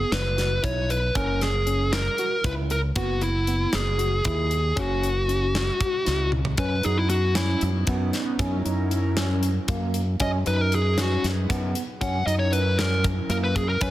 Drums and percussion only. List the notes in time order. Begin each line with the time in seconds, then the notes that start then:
0.12 snare, closed hi-hat
0.38 snare, closed hi-hat
0.64 kick, closed hi-hat
0.90 closed hi-hat
1.15 kick, closed hi-hat
1.41 snare, closed hi-hat
1.67 closed hi-hat
1.93 snare, closed hi-hat
2.18 closed hi-hat
2.44 kick, closed hi-hat
2.70 closed hi-hat
2.96 kick, closed hi-hat
3.21 closed hi-hat
3.47 closed hi-hat
3.73 snare, closed hi-hat
3.99 closed hi-hat
4.25 kick, closed hi-hat
4.51 closed hi-hat
4.77 kick, closed hi-hat
5.03 closed hi-hat
5.29 closed hi-hat
5.55 snare, closed hi-hat
5.81 kick, closed hi-hat
6.06 snare, closed hi-hat
6.32 high tom
6.45 floor tom
6.57 kick, closed hi-hat
6.83 closed hi-hat
7.10 closed hi-hat
7.35 snare, closed hi-hat
7.61 closed hi-hat
7.87 kick, closed hi-hat
8.13 snare, closed hi-hat
8.39 kick, closed hi-hat
8.66 closed hi-hat
8.91 closed hi-hat
9.17 snare, closed hi-hat
9.43 closed hi-hat
9.68 kick, closed hi-hat
9.94 closed hi-hat
10.20 kick, closed hi-hat
10.46 closed hi-hat
10.72 closed hi-hat
10.98 snare, closed hi-hat
11.24 snare, closed hi-hat
11.50 kick, closed hi-hat
11.75 closed hi-hat
12.01 kick, closed hi-hat
12.28 closed hi-hat
12.53 closed hi-hat
12.79 snare, closed hi-hat
13.04 kick, closed hi-hat
13.30 closed hi-hat
13.56 kick, closed hi-hat
13.81 kick, closed hi-hat